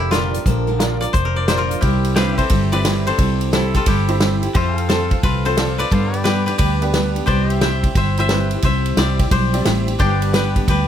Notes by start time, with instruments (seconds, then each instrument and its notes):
Already playing: fingered electric bass F1, koto G4 A4 C5 D5, pedal steel guitar A#4 D5 F5
0.00 steel-string acoustic guitar F3 A#3 D4 A#4, koto E4
0.11 steel-string acoustic guitar A#2 D3 F3 A#3 D4 A#4, honky-tonk piano F4 A#4 D5, koto F4, snare, closed hi-hat
0.34 steel-string acoustic guitar F3 A#3 D4 A#4, closed hi-hat
0.46 fingered electric bass A#1, steel-string acoustic guitar A#2 D3 F3 A#3 D4 A#4, kick, closed hi-hat
0.67 steel-string acoustic guitar A#2 D3 F3 A#3 D4 A#4
0.79 honky-tonk piano F4 A#4 D5, snare, closed hi-hat
1.01 steel-string acoustic guitar F3 A#3 D4 A#4, koto D5, closed hi-hat
1.13 fingered electric bass F1, steel-string acoustic guitar F3 A#3 D4 A#4, koto C5, kick, closed hi-hat
1.25 koto A#4
1.36 steel-string acoustic guitar F3 A#3 D4 A#4, koto D5
1.47 steel-string acoustic guitar A#2 D3 F3 A#3 D4 A#4, honky-tonk piano F4 A#4 D5, koto C5, snare, closed hi-hat
1.58 koto F4 A#4
1.69 steel-string acoustic guitar F3 A#3 D4 A#4, closed hi-hat
1.81 fingered electric bass C2, steel-string acoustic guitar C3 G3 C4 E4 G4, koto E4 G4, kick, ride
2.05 ride
2.15 steel-string acoustic guitar G3 C4, honky-tonk piano C4 E4 G4 C5, pedal steel guitar D4 G4 F5, koto G4 B4, snare, ride
2.38 steel-string acoustic guitar C4 E4 G4, koto A4 C5, pedal steel guitar E5, kick, ride
2.42 pedal steel guitar C4
2.49 fingered electric bass G1, steel-string acoustic guitar G3 C4 E4 G4, kick, ride
2.72 honky-tonk piano C4 E4 G4 C5, koto B4 D5, ride
2.83 steel-string acoustic guitar G3 C4 E4 G4, honky-tonk piano C4 E4 G4 C5, snare, ride
3.06 steel-string acoustic guitar C4 E4 G4, koto A4 C5, ride
3.18 fingered electric bass C2, steel-string acoustic guitar C3 G3 C4 E4 G4, kick, ride
3.41 ride
3.52 steel-string acoustic guitar G3 C4 E4 G4, honky-tonk piano C4 E4 G4 C5, koto E4 A4, snare, ride
3.74 steel-string acoustic guitar C4 E4 G4, koto F4 A4, kick, ride
3.86 fingered electric bass G1, steel-string acoustic guitar G3 C4 E4 G4, koto E4 G4, kick, ride
4.08 honky-tonk piano C4 E4 G4 C5, ride
4.20 steel-string acoustic guitar G3 C4 E4 G4, honky-tonk piano C4 E4 G4 C5, snare, ride
4.42 steel-string acoustic guitar C4 E4 G4, ride
4.54 fingered electric bass F2, steel-string acoustic guitar F3 C4 F4 A4, koto C4 F4, pedal steel guitar G4 C5 E5, kick, ride
4.77 pedal steel guitar A4 F5, ride
4.89 steel-string acoustic guitar F3 C4 F4 A4, honky-tonk piano C4 F4 A4 C5, koto F4 A4, snare, ride
5.10 steel-string acoustic guitar C4 F4 A4, kick, ride
5.22 fingered electric bass C2, steel-string acoustic guitar F3 C4 F4 A4, koto F4 B4, kick, ride
5.45 honky-tonk piano C4 F4 A4 C5, koto A4 C5, ride
5.56 steel-string acoustic guitar F3 C4 F4 A4, honky-tonk piano C4 F4 A4 D5, snare, ride
5.78 steel-string acoustic guitar C4 F4 A4, koto B4 D5, ride
5.91 steel-string acoustic guitar G2 D3 G3 B3 D4 G4, fingered electric bass G2, pedal steel guitar A4 C5 F5, kick, ride
6.14 pedal steel guitar B4, ride
6.18 pedal steel guitar D5 G5
6.24 steel-string acoustic guitar G3 B3 D4, honky-tonk piano B3 D4 G4 B4, koto G4 B4, snare, ride
6.46 steel-string acoustic guitar B3 D4 G4, koto G4 B4, ride
6.50 steel-string acoustic guitar G3
6.58 fingered electric bass D2, steel-string acoustic guitar G3 B3 D4, koto G4 B4, kick, ride
6.62 steel-string acoustic guitar G4
6.82 honky-tonk piano B3 D4 G4 B4, ride
6.93 steel-string acoustic guitar G3 B3 D4 G4, honky-tonk piano B3 D4 G4 B4, snare, ride
7.15 steel-string acoustic guitar G3 B3 D4 G4, ride
7.26 fingered electric bass C2, steel-string acoustic guitar C3 G3 C4 E4 G4, koto G4 C5, pedal steel guitar B4 D5 G5, kick, ride
7.47 pedal steel guitar C5, ride
7.53 pedal steel guitar E5
7.61 steel-string acoustic guitar G3 C4 E4 G4, honky-tonk piano C4 E4 G4 C5, koto E5 G5, snare, ride
7.84 steel-string acoustic guitar C4 E4 G4, kick, ride
7.95 fingered electric bass G1, steel-string acoustic guitar G3 C4 E4 G4, koto C5 E5, kick, ride
8.17 honky-tonk piano C4 E4 G4 C5, koto C5 E5, ride
8.29 steel-string acoustic guitar G3 C4 E4, honky-tonk piano C4 E4 G4 B4, snare, ride
8.33 steel-string acoustic guitar G4
8.51 steel-string acoustic guitar E4 G4, ride
8.55 steel-string acoustic guitar C4
8.62 fingered electric bass C2, steel-string acoustic guitar C3 G3 C4 E4 G4, koto C5 E5, kick, ride
8.86 ride
8.97 fingered electric bass C2, steel-string acoustic guitar G3 C4 E4 G4, honky-tonk piano C4 E4 G4 C5, koto G4 D5, snare, ride
9.19 steel-string acoustic guitar C4 E4 G4, kick, ride
9.31 fingered electric bass B1, steel-string acoustic guitar G3 C4 E4 G4, koto G4 C5, kick, ride
9.53 honky-tonk piano C4 E4 G4 D5, ride
9.65 fingered electric bass A1, steel-string acoustic guitar G3 C4 E4 G4, honky-tonk piano C4 E4 G4 C5, snare, ride
9.87 steel-string acoustic guitar C4 E4 G4, ride
9.99 fingered electric bass G1, steel-string acoustic guitar G2 D3 G3 B3 D4 G4, koto D4 G4, pedal steel guitar C5 D5 G5, kick, ride
10.20 pedal steel guitar B4, ride
10.33 steel-string acoustic guitar G3 B3 D4 G4, honky-tonk piano B3 D4 G4 B4, koto G4 B4, snare, ride
10.55 steel-string acoustic guitar G3 B3 D4 G4, kick, ride
10.68 fingered electric bass D2, steel-string acoustic guitar G3 B3 D4 G4, koto G4 B4, kick, ride